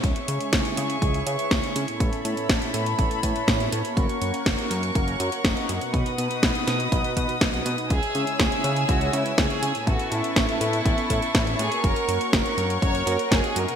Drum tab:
HH |xxxxxxxxxxxxxxxx|xxxxxxxxxxxxxxxx|xxxxxxxxxxxxxxxx|xxxxxxxxxxxxxxxx|
SD |----o-------o---|----o-------o---|----o-------o---|----o-o-----o---|
BD |o---o---o---o---|o---o---o-o-o---|o---o---o---o---|o---o---o-o-o---|

HH |xxxxxxxxxxxxxxxx|xxxxxxxxxxxxxxxx|xxxxxxxxxxxxxxxx|
SD |----o-------o---|----o-------o---|----o-------o---|
BD |o---o---o---o---|o---o---o-o-o---|o---o---o---o---|